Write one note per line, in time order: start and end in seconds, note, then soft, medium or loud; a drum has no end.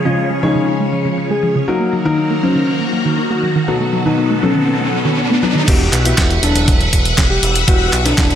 0.00 1.64 F3 medium
0.00 1.64 C#4 medium
0.00 1.64 G#4 medium
0.00 1.64 C#5 medium
0.05 0.40 C#3 medium
0.05 0.17 C#3 loud
0.05 0.40 G#3 medium
0.05 0.40 C#4 medium
0.05 0.40 F4 medium
0.05 0.33 F4 medium
0.05 0.40 D#5 medium
0.05 closed hi-hat medium
0.18 0.26 C#4 medium
0.18 closed hi-hat medium
0.30 0.38 G#3 loud
0.30 closed hi-hat soft
0.43 1.65 C#3 medium
0.43 0.55 F3 loud
0.43 1.65 G#3 medium
0.43 1.65 C#4 medium
0.43 0.70 D#4 medium
0.43 1.65 F4 medium
0.43 1.65 C#5 medium
0.43 closed hi-hat medium
0.55 0.60 C#3 loud
0.55 closed hi-hat medium
0.68 0.73 C#4 medium
0.68 closed hi-hat medium
0.80 0.85 G#3 medium
0.80 closed hi-hat soft
0.93 0.98 F3 medium
0.93 closed hi-hat medium
1.05 1.17 C#3 medium
1.05 closed hi-hat medium
1.18 1.26 C#4 medium
1.18 closed hi-hat medium
1.30 1.39 G#3 medium
1.30 1.58 G#4 loud
1.43 1.55 F3 loud
1.43 closed hi-hat medium
1.55 1.60 C#3 loud
1.55 closed hi-hat medium
1.68 5.64 D#3 medium
1.68 2.02 F#3 medium
1.68 3.66 A#3 medium
1.68 2.02 A#3 medium
1.68 2.02 D#4 medium
1.68 1.73 D#4 medium
1.68 5.64 F#4 medium
1.68 1.95 F#4 loud
1.68 3.66 A#4 medium
1.68 2.02 A#4 medium
1.68 closed hi-hat medium
1.68 riser medium
1.80 1.85 A#3 medium
1.93 1.98 F#3 medium
1.93 closed hi-hat medium
2.05 2.17 D#3 loud
2.05 2.40 F#3 medium
2.05 2.40 A#3 medium
2.05 2.40 D#4 medium
2.05 2.33 D#4 medium
2.05 2.40 A#4 loud
2.05 closed hi-hat medium
2.18 2.26 D#4 medium
2.18 closed hi-hat medium
2.30 2.39 A#3 loud
2.30 closed hi-hat soft
2.43 3.65 F#3 medium
2.43 2.55 F#3 loud
2.43 3.65 A#3 medium
2.43 2.70 C#4 medium
2.43 3.65 D#4 medium
2.43 3.65 C5 medium
2.43 closed hi-hat medium
2.55 2.60 D#3 loud
2.55 closed hi-hat medium
2.68 2.73 D#4 medium
2.68 closed hi-hat medium
2.80 2.85 A#3 medium
2.80 closed hi-hat soft
2.93 2.98 F#3 medium
2.93 closed hi-hat medium
3.05 3.17 D#3 medium
3.05 closed hi-hat medium
3.18 3.26 D#4 medium
3.18 closed hi-hat medium
3.30 3.39 A#3 medium
3.30 3.58 F#4 medium
3.43 3.55 F#3 loud
3.43 closed hi-hat medium
3.55 3.60 D#3 loud
3.55 closed hi-hat soft
3.68 4.02 B2 medium
3.68 4.02 F#3 medium
3.68 4.02 B3 medium
3.68 3.73 B3 medium
3.68 5.66 B3 medium
3.68 4.02 D#4 medium
3.68 3.95 F#4 loud
3.68 4.02 A4 medium
3.68 5.66 A4 medium
3.68 closed hi-hat medium
3.81 3.85 A3 medium
3.93 3.98 F#3 medium
3.93 closed hi-hat medium
4.05 4.40 B2 medium
4.05 4.17 D#3 loud
4.05 4.40 F#3 medium
4.05 4.40 B3 medium
4.05 4.33 D#4 medium
4.05 4.40 D#4 medium
4.05 4.40 B4 medium
4.05 closed hi-hat medium
4.18 4.26 B3 medium
4.18 closed hi-hat medium
4.30 4.39 A3 loud
4.30 closed hi-hat soft
4.43 5.40 B2 medium
4.43 4.55 F#3 loud
4.43 5.40 F#3 medium
4.43 5.40 B3 medium
4.43 4.70 C#4 medium
4.43 5.40 D#4 medium
4.43 5.40 A4 loud
4.43 closed hi-hat medium
4.55 4.60 D#3 loud
4.55 closed hi-hat medium
4.68 4.73 B3 medium
4.68 closed hi-hat medium
4.80 4.85 A3 medium
4.80 closed hi-hat soft
4.93 4.98 F#3 medium
4.93 closed hi-hat medium
5.05 5.17 D#3 medium
5.05 closed hi-hat medium
5.18 5.26 B3 medium
5.18 closed hi-hat medium
5.30 5.38 A3 loud
5.30 5.58 B3 loud
5.30 closed hi-hat soft
5.43 5.55 F#3 medium
5.43 5.65 F#3 medium
5.43 5.65 B3 medium
5.43 5.65 D#4 medium
5.43 5.65 B4 medium
5.43 closed hi-hat medium
5.55 5.60 D#3 loud
5.55 closed hi-hat medium
5.68 5.89 E1 loud
5.68 6.02 B3 medium
5.68 6.02 E4 medium
5.68 6.02 F#4 medium
5.68 6.02 G4 loud
5.68 5.95 G4 loud
5.68 8.35 B4 medium
5.68 8.35 E5 medium
5.68 8.35 F#5 medium
5.68 kick loud
5.68 closed hi-hat medium
5.68 crash loud
5.93 6.14 B1 loud
5.93 clap medium
5.93 closed hi-hat medium
6.05 6.40 B3 medium
6.05 6.33 E4 medium
6.05 6.40 E4 medium
6.05 6.40 F#4 loud
6.05 6.40 G4 loud
6.05 closed hi-hat medium
6.18 6.39 E1 loud
6.18 kick loud
6.18 snare loud
6.18 clap medium
6.18 closed hi-hat medium
6.30 closed hi-hat soft
6.43 6.53 E1 medium
6.43 7.65 F#3 medium
6.43 7.65 B3 medium
6.43 6.70 D4 loud
6.43 7.65 E4 medium
6.43 7.65 A4 medium
6.43 closed hi-hat medium
6.55 6.66 E1 medium
6.55 closed hi-hat medium
6.68 6.89 E1 loud
6.68 kick loud
6.68 closed hi-hat medium
6.81 closed hi-hat soft
6.93 7.14 E1 medium
6.93 kick medium
6.93 closed hi-hat medium
7.05 closed hi-hat medium
7.18 7.39 E1 medium
7.18 kick loud
7.18 snare loud
7.18 clap medium
7.18 closed hi-hat medium
7.30 7.58 G4 loud
7.43 7.64 E1 medium
7.43 closed hi-hat medium
7.55 closed hi-hat medium
7.68 7.89 E1 loud
7.68 8.02 B3 medium
7.68 8.02 E4 medium
7.68 7.95 F#4 loud
7.68 8.02 F#4 medium
7.68 8.02 G4 loud
7.68 kick loud
7.68 closed hi-hat medium
7.93 8.14 B1 loud
7.93 clap medium
7.93 closed hi-hat medium
8.05 8.35 F#3 medium
8.05 8.35 B3 medium
8.05 8.33 D4 medium
8.05 8.35 E4 medium
8.05 8.35 A4 medium
8.05 snare soft
8.05 closed hi-hat medium
8.18 8.35 E1 loud
8.18 kick loud
8.18 snare loud
8.18 clap loud
8.18 closed hi-hat medium
8.31 closed hi-hat soft